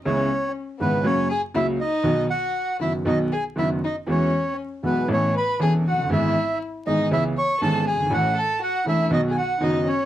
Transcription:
X:1
M:4/4
L:1/16
Q:1/4=119
K:E
V:1 name="Bandoneon"
c4 z2 B2 c2 g2 e2 d2- | d2 f4 e2 d2 g2 e2 d2 | c4 z2 B2 c2 b2 g2 f2 | e4 z2 d2 e2 c'2 a2 g2 |
f2 a2 f2 e2 d3/2 g/2 f2 d2 c2 |]
V:2 name="Violin"
C4 z2 B,2 C2 G2 E2 D2- | D2 F4 E2 D2 G2 E2 D2 | C4 z2 B,2 C2 B2 G2 F2 | E4 z2 D2 E2 c2 A2 G2 |
F2 A2 F2 E2 D3/2 G/2 F2 D2 C2 |]
V:3 name="Grand piano" clef=bass
[C,,C,G,B,E]2 z4 [G,,,G,,C,G,B,E]2 [F,,C,F,^A,F]2 z2 [C,,C,F,A,F]2 z2 | [B,,,B,,D,F,B,F]2 z4 [F,,,F,,D,F,B,F]2 [B,,,B,,D,F,B,F]2 z2 [F,,,F,,D,F,B,F]2 z2 | [E,,E,G,B,F]2 z4 [B,,,B,,E,G,B,F]2 [A,,,A,,E,B,CA]2 z2 [E,,,E,,E,B,CA]2 z/2 =F,,,/2 ^F,,,/2 =G,,,/2 | [G,,,G,,E,G,B,G]2 z4 [G,,,G,,E,G,B,G]2 [C,,C,E,B,CG]2 z2 [G,,,G,,E,B,CG]2 z/2 F,,,/2 =G,,,/2 ^G,,,/2 |
[A,,,A,,E,A,CA]2 z4 [E,,,E,,E,A,CA]2 [B,,,B,,D,F,B,F]2 z2 [F,,,F,,D,F,B,F]2 z2 |]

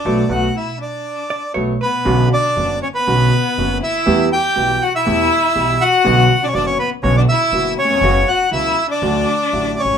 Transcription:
X:1
M:4/4
L:1/16
Q:1/4=120
K:Bm
V:1 name="Bandoneon"
d2 f2 e2 d6 z2 B2- | B2 d4 c B6- B e2- | e2 g4 f e6- e f2- | f3 d/2 c/2 d c B2 c d e4 c2- |
c2 f2 e3 d6- d c2 |]
V:2 name="Hollow-body jazz guitar"
z8 z2 d2 c2 B2 | z16 | z16 | z16 |
z16 |]
V:3 name="Violin"
D2 F2 E2 D6 z2 B,2- | B,2 D4 C B,6- B, E2- | E2 G4 F E6- E F2- | F3 D/2 C/2 D C B,2 C D E4 C2- |
C2 F2 E3 D6- D C2 |]
V:4 name="Grand piano" clef=bass
[F,A,B,]2 [F,A,B,]2 z8 [F,A,B,]2 z2 | [B,,,B,,D,B,CF]2 z2 [F,,,F,,D,B,CF]2 z2 [B,,,B,,D,B,CF]2 z2 [F,,,F,,D,B,CF]2 z2 | [E,,E,G,B,G]2 z2 [B,,,B,,E,G,B,G]2 z2 [E,,E,G,B,G]2 z2 [B,,,B,,E,G,B,G]2 z2 | [B,,,B,,D,F,B,F]2 z2 [F,,,F,,D,F,B,F]2 z2 [B,,,B,,D,F,B,F]2 z2 [F,,,F,,D,F,B,F]2 z/2 ^D,,/2 E,,/2 ^E,,/2 |
[F,,C,F,B,F]2 z2 [C,,C,F,B,F]2 z2 [D,,D,F,A,F]2 z2 [A,,,A,,D,F,A,F]2 z/2 ^G,,,/2 A,,,/2 z/2 |]
V:5 name="Upright bass" clef=bass
B,,,3/2 z/2 B,,,3/2 z8 z/2 B,,,3/2 z2 z/2 | B,,,3/2 z2 z/2 F,,,3/2 z2 z/2 B,,,3/2 z2 z/2 F,,,3/2 z2 z/2 | E,,3/2 z2 z/2 B,,,3/2 z2 z/2 E,,3/2 z2 z/2 B,,,3/2 z2 z/2 | B,,,3/2 z2 z/2 F,,,3/2 z2 z/2 B,,,3/2 z2 z/2 F,,,3/2 z2 z/2 |
F,,,3/2 z2 z/2 C,,3/2 z2 z/2 D,,3/2 z2 z/2 A,,,3/2 z ^G,,,/2 A,,,/2 z/2 |]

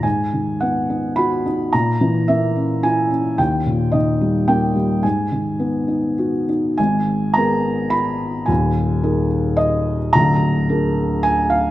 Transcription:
X:1
M:3/4
L:1/16
Q:1/4=108
K:G#m
V:1 name="Felt piano"
g4 f4 b4 | a4 e4 g4 | =g4 d4 g4 | g8 z4 |
g4 a4 b4 | g6 z2 d3 z | a8 g2 ^e2 |]
V:2 name="Felt piano"
G,,2 D,2 B,2 D2 F2 D2 | A,,2 E,2 A,2 C2 E2 C2 | D,,2 A,,2 D,2 =G,2 A,2 G,2 | G,,2 D,2 B,2 D2 F2 D2 |
[G,,,G,,]4 [B,GA]4 z4 | [D,,,D,,]4 [DGA]4 z4 | [=D,,,=D,,]4 [=DGA]4 z4 |]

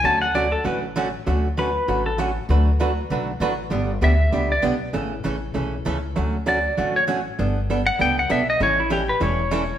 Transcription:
X:1
M:4/4
L:1/8
Q:"Swing" 1/4=196
K:D
V:1 name="Pedal steel guitar"
a f d A B z3 | z2 B3 A z2 | z8 | z2 e3 d z2 |
z8 | z2 d3 c z2 | z3 f g f e _e | c E G B c4 |]
V:2 name="Hollow-body jazz guitar"
[D,F,A,CF] z [D,F,A,CF] z [D,F,A,CF] z [D,F,A,CF] z | [D,F,A,CF] z [D,F,A,CF] z [D,F,A,CF] z [D,F,A,CF] z | [D,F,A,DFB] z [D,F,A,DFB] z [D,F,A,DFB] z [D,F,A,DFB] z | [D,G,B,DG] z [D,G,B,DG] z [D,G,B,DG] z [D,G,B,DG] z |
[C,E,A,CA] z [C,E,A,CA] z [C,E,A,CA] z [C,E,A,CA] z | [D,F,A,CF] z [D,F,A,CF] z [D,F,A,CF] z [D,F,A,CF] z | [G,B,DA] z [G,B,DA] z [G,B,DA] z [G,B,DA] z | [E,G,CEA] z [E,G,CEA] z [E,G,CEA] z [E,G,CEA] z |]
V:3 name="Upright bass" clef=bass
D,,4 A,,,4 | D,,4 A,,,4 | D,,4 B,,,2 A,,,2 | G,,,2 D,,2 C,,2 B,,,2 |
A,,,2 A,,,2 B,,,2 C,,2 | D,,4 A,,,4 | G,,,4 C,,2 B,,,2 | A,,,4 E,,,4 |]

